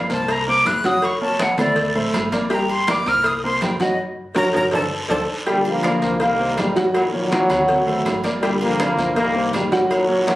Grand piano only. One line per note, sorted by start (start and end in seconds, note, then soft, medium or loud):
0.10 0.40 A#3 medium
0.10 0.40 A#4 medium
0.10 0.41 C5 medium
0.47 0.78 A#3 medium
0.47 0.78 A#4 medium
0.47 0.78 C5 medium
0.85 1.15 F#3 loud
0.85 1.15 F#4 loud
0.85 1.15 F#5 medium
1.21 1.52 A#3 medium
1.21 1.52 A#4 medium
1.21 1.52 C#5 medium
1.58 1.88 A3 medium
1.58 1.89 A4 medium
1.58 1.89 C5 medium
1.95 2.26 A3 medium
1.95 2.26 A4 medium
1.95 2.26 C5 medium
2.32 2.47 A#3 medium
2.32 2.48 A#4 medium
2.32 2.48 D5 medium
2.50 2.81 G3 medium
2.50 2.81 G4 medium
2.50 2.81 G5 medium
2.87 3.03 A#3 medium
2.87 3.03 A#4 medium
2.87 3.03 D5 medium
3.07 3.37 A#3 medium
3.07 3.37 A#4 medium
3.07 3.37 C5 medium
3.44 3.74 A#3 medium
3.44 3.74 A#4 medium
3.44 3.74 C5 medium
3.80 3.95 F#3 loud
3.80 3.96 F#4 loud
3.80 3.96 F#5 medium
4.35 4.48 F#4 loud
4.35 4.48 A#4 loud
4.35 4.48 C#5 loud
4.54 4.66 F#4 loud
4.54 4.66 A#4 loud
4.54 4.66 C#5 medium
4.72 4.85 A4 medium
4.72 4.85 C5 loud
4.72 4.85 D5 medium
5.09 5.22 A4 loud
5.09 5.22 C5 loud
5.09 5.22 D5 loud
5.46 5.77 G3 medium
5.46 5.77 G4 medium
5.46 5.77 G5 medium
5.84 5.99 A#3 medium
5.84 5.99 A#4 medium
5.84 5.99 D5 medium
6.02 6.33 A#3 medium
6.02 6.33 A#4 medium
6.02 6.33 C5 medium
6.39 6.69 A#3 medium
6.39 6.70 A#4 medium
6.39 6.70 C5 medium
6.76 7.06 F#3 loud
6.76 7.07 F#4 medium
6.76 7.07 F#5 loud
7.12 7.28 A#3 medium
7.12 7.28 A#4 medium
7.12 7.28 C#5 medium
7.31 7.46 A#3 medium
7.31 7.47 A#4 medium
7.31 7.47 C#5 medium
7.50 7.80 F#3 medium
7.50 7.80 F#4 loud
7.50 7.81 F#5 medium
7.86 8.17 A3 medium
7.86 8.18 A4 medium
7.86 8.18 C5 medium
8.24 8.39 A#3 medium
8.24 8.39 A#4 medium
8.24 8.40 D5 medium
8.43 8.73 G3 medium
8.43 8.73 G4 medium
8.43 8.73 G5 medium
8.80 8.95 A#3 medium
8.80 8.95 A#4 medium
8.80 8.95 D5 medium
8.98 9.28 A#3 medium
8.98 9.29 A#4 medium
8.98 9.29 C5 medium
9.35 9.65 A#3 medium
9.35 9.66 A#4 medium
9.35 9.66 C5 medium
9.72 10.02 F#3 loud
9.72 10.02 F#4 medium
9.72 10.03 F#5 loud
10.08 10.24 A#3 medium
10.08 10.24 A#4 medium
10.08 10.24 C#5 medium
10.27 10.36 A#3 medium
10.27 10.36 A#4 medium
10.27 10.36 C#5 medium